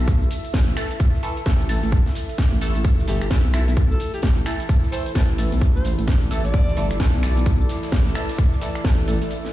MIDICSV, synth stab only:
0, 0, Header, 1, 2, 480
1, 0, Start_track
1, 0, Tempo, 461538
1, 1040, Time_signature, 4, 2, 24, 8
1, 9910, End_track
2, 0, Start_track
2, 0, Title_t, "Synth stab"
2, 0, Program_c, 0, 62
2, 800, Note_on_c, 0, 52, 93
2, 800, Note_on_c, 0, 57, 87
2, 800, Note_on_c, 0, 69, 103
2, 913, Note_off_c, 0, 52, 0
2, 913, Note_off_c, 0, 57, 0
2, 913, Note_off_c, 0, 69, 0
2, 1280, Note_on_c, 0, 52, 92
2, 1280, Note_on_c, 0, 57, 82
2, 1280, Note_on_c, 0, 69, 99
2, 1393, Note_off_c, 0, 52, 0
2, 1393, Note_off_c, 0, 57, 0
2, 1393, Note_off_c, 0, 69, 0
2, 1520, Note_on_c, 0, 52, 88
2, 1520, Note_on_c, 0, 57, 77
2, 1520, Note_on_c, 0, 69, 94
2, 1633, Note_off_c, 0, 52, 0
2, 1633, Note_off_c, 0, 57, 0
2, 1633, Note_off_c, 0, 69, 0
2, 1760, Note_on_c, 0, 52, 69
2, 1760, Note_on_c, 0, 57, 67
2, 1760, Note_on_c, 0, 69, 81
2, 1873, Note_off_c, 0, 52, 0
2, 1873, Note_off_c, 0, 57, 0
2, 1873, Note_off_c, 0, 69, 0
2, 2719, Note_on_c, 0, 52, 102
2, 2719, Note_on_c, 0, 57, 96
2, 2719, Note_on_c, 0, 69, 112
2, 2888, Note_off_c, 0, 52, 0
2, 2888, Note_off_c, 0, 57, 0
2, 2888, Note_off_c, 0, 69, 0
2, 3199, Note_on_c, 0, 52, 89
2, 3199, Note_on_c, 0, 57, 82
2, 3199, Note_on_c, 0, 69, 101
2, 3313, Note_off_c, 0, 52, 0
2, 3313, Note_off_c, 0, 57, 0
2, 3313, Note_off_c, 0, 69, 0
2, 3440, Note_on_c, 0, 52, 87
2, 3440, Note_on_c, 0, 57, 77
2, 3440, Note_on_c, 0, 69, 94
2, 3553, Note_off_c, 0, 52, 0
2, 3553, Note_off_c, 0, 57, 0
2, 3553, Note_off_c, 0, 69, 0
2, 3680, Note_on_c, 0, 52, 69
2, 3680, Note_on_c, 0, 57, 65
2, 3680, Note_on_c, 0, 69, 81
2, 3793, Note_off_c, 0, 52, 0
2, 3793, Note_off_c, 0, 57, 0
2, 3793, Note_off_c, 0, 69, 0
2, 4639, Note_on_c, 0, 52, 96
2, 4639, Note_on_c, 0, 57, 83
2, 4640, Note_on_c, 0, 69, 104
2, 4753, Note_off_c, 0, 52, 0
2, 4753, Note_off_c, 0, 57, 0
2, 4753, Note_off_c, 0, 69, 0
2, 5119, Note_on_c, 0, 52, 88
2, 5119, Note_on_c, 0, 57, 82
2, 5119, Note_on_c, 0, 69, 94
2, 5233, Note_off_c, 0, 52, 0
2, 5233, Note_off_c, 0, 57, 0
2, 5233, Note_off_c, 0, 69, 0
2, 5359, Note_on_c, 0, 52, 89
2, 5359, Note_on_c, 0, 57, 80
2, 5359, Note_on_c, 0, 69, 97
2, 5473, Note_off_c, 0, 52, 0
2, 5473, Note_off_c, 0, 57, 0
2, 5473, Note_off_c, 0, 69, 0
2, 5600, Note_on_c, 0, 52, 74
2, 5600, Note_on_c, 0, 57, 70
2, 5600, Note_on_c, 0, 69, 80
2, 5713, Note_off_c, 0, 52, 0
2, 5713, Note_off_c, 0, 57, 0
2, 5713, Note_off_c, 0, 69, 0
2, 6560, Note_on_c, 0, 52, 100
2, 6560, Note_on_c, 0, 57, 91
2, 6560, Note_on_c, 0, 69, 105
2, 6673, Note_off_c, 0, 52, 0
2, 6673, Note_off_c, 0, 57, 0
2, 6673, Note_off_c, 0, 69, 0
2, 7040, Note_on_c, 0, 52, 89
2, 7040, Note_on_c, 0, 57, 83
2, 7040, Note_on_c, 0, 69, 104
2, 7153, Note_off_c, 0, 52, 0
2, 7153, Note_off_c, 0, 57, 0
2, 7153, Note_off_c, 0, 69, 0
2, 7279, Note_on_c, 0, 57, 80
2, 7279, Note_on_c, 0, 69, 101
2, 7280, Note_on_c, 0, 52, 85
2, 7393, Note_off_c, 0, 52, 0
2, 7393, Note_off_c, 0, 57, 0
2, 7393, Note_off_c, 0, 69, 0
2, 7520, Note_on_c, 0, 69, 80
2, 7521, Note_on_c, 0, 52, 70
2, 7521, Note_on_c, 0, 57, 63
2, 7633, Note_off_c, 0, 69, 0
2, 7634, Note_off_c, 0, 52, 0
2, 7634, Note_off_c, 0, 57, 0
2, 8480, Note_on_c, 0, 69, 105
2, 8481, Note_on_c, 0, 52, 91
2, 8481, Note_on_c, 0, 57, 91
2, 8594, Note_off_c, 0, 52, 0
2, 8594, Note_off_c, 0, 57, 0
2, 8594, Note_off_c, 0, 69, 0
2, 8960, Note_on_c, 0, 52, 89
2, 8960, Note_on_c, 0, 57, 83
2, 8961, Note_on_c, 0, 69, 99
2, 9073, Note_off_c, 0, 52, 0
2, 9073, Note_off_c, 0, 57, 0
2, 9074, Note_off_c, 0, 69, 0
2, 9200, Note_on_c, 0, 52, 88
2, 9200, Note_on_c, 0, 57, 84
2, 9200, Note_on_c, 0, 69, 98
2, 9313, Note_off_c, 0, 52, 0
2, 9313, Note_off_c, 0, 57, 0
2, 9314, Note_off_c, 0, 69, 0
2, 9440, Note_on_c, 0, 52, 70
2, 9440, Note_on_c, 0, 57, 65
2, 9440, Note_on_c, 0, 69, 82
2, 9553, Note_off_c, 0, 52, 0
2, 9553, Note_off_c, 0, 57, 0
2, 9553, Note_off_c, 0, 69, 0
2, 9910, End_track
0, 0, End_of_file